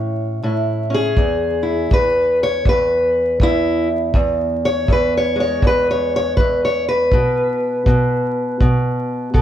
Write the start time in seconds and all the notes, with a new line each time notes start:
Already playing: A2 E3 C#4 E4
0.43 A2 E4
0.90 C#4
0.94 G#4
1.17 E2, kick
1.63 E4
1.91 E2 B4, kick
2.43 C#5
2.65 E2 B4, kick
3.40 E2 E4, kick
4.14 E2, kick
4.65 C#5
4.88 E2, kick
4.92 B4
5.17 C#5
5.36 G#3
5.40 C#5
5.62 E2, kick
5.67 B4
5.91 C#5
6.16 C#5
6.37 E2 B4, kick
6.65 C#5
6.88 B4
7.12 B2, kick
7.86 B2, kick
8.60 B2, kick
9.34 B2 A4, kick